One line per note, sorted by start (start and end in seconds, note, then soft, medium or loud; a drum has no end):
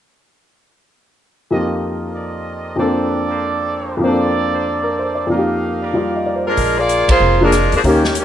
1.50 2.74 F2 soft
1.50 2.75 F3 soft
1.50 2.77 A#3 soft
1.50 2.78 D#4 soft
1.50 2.77 F4 medium
1.50 2.78 G4 soft
1.50 2.13 A#4 medium
1.50 2.76 C5 medium
1.50 2.77 D#5 medium
2.14 2.77 A#4 soft
2.14 2.76 D5 medium
2.76 3.96 F2 soft
2.76 3.98 F3 soft
2.76 4.00 A#3 soft
2.76 4.02 C4 soft
2.76 4.02 A4 medium
2.76 3.28 C5 medium
2.76 4.02 D5 medium
2.80 4.05 D4 soft
2.80 4.06 A4 soft
3.29 4.03 A#4 medium
3.29 4.02 C5 medium
3.97 5.25 F2 soft
3.97 5.28 F3 soft
4.02 5.29 A#3 soft
4.02 5.30 C4 soft
4.02 5.30 A4 medium
4.02 4.53 C5 medium
4.02 5.30 D5 medium
4.06 5.31 D4 soft
4.06 5.32 A4 soft
4.54 5.28 A#4 medium
4.54 5.30 C5 medium
4.83 5.05 A#4 soft
4.99 5.23 C5 soft
5.15 5.37 D5 soft
5.27 6.55 F2 soft
5.27 5.92 F3 soft
5.27 6.57 G4 medium
5.27 5.81 A#4 medium
5.27 6.57 D#5 medium
5.27 6.57 F5 medium
5.32 6.58 A#3 soft
5.32 6.59 D#4 soft
5.37 6.60 G4 soft
5.81 6.57 A#4 medium
5.81 6.57 D5 medium
5.93 6.57 F3 soft
5.93 6.57 G3 soft
5.93 6.58 F4 soft
5.93 6.25 D5 soft
6.16 6.31 D#5 soft
6.26 6.44 D5 soft
6.36 6.52 C5 soft
6.47 6.76 G#3 medium
6.47 6.76 D4 medium
6.47 6.75 F4 medium
6.47 6.62 A#4 soft
6.47 6.76 A#4 medium
6.57 7.05 A#1 medium
6.57 kick soft
6.57 open hi-hat soft
6.78 7.09 A#3 medium
6.78 7.09 F4 medium
6.78 7.09 G#4 medium
6.78 7.09 D5 loud
6.89 closed hi-hat soft
7.08 7.19 A1 medium
7.08 7.39 A#3 medium
7.08 7.39 F4 medium
7.08 7.39 G#4 medium
7.08 7.39 C5 medium
7.08 kick medium
7.08 ride medium
7.20 7.68 F1 medium
7.41 7.51 F3 medium
7.41 7.72 G#3 medium
7.41 7.51 A#3 soft
7.41 7.52 D4 soft
7.41 7.71 D4 medium
7.41 7.71 F4 medium
7.41 7.52 G#4 medium
7.41 7.71 A#4 medium
7.52 cross-stick medium
7.52 closed hi-hat soft
7.72 7.83 E2 medium
7.72 7.80 F3 medium
7.72 7.80 A#3 medium
7.72 7.80 G#4 medium
7.72 open hi-hat soft
7.76 7.80 D4 medium
7.84 8.25 D#2 medium
7.84 8.02 D#3 soft
7.84 8.02 A#3 soft
7.84 8.02 C#4 soft
7.84 8.15 C#4 medium
7.84 8.02 G4 medium
7.84 kick soft
7.84 open hi-hat soft
7.88 8.15 D#3 medium
7.88 8.15 A#3 medium
7.88 8.15 G4 medium
8.04 snare soft
8.15 closed hi-hat soft
8.19 8.25 D#3 medium
8.19 8.25 A#3 medium
8.19 8.25 C#4 medium
8.19 8.25 G4 medium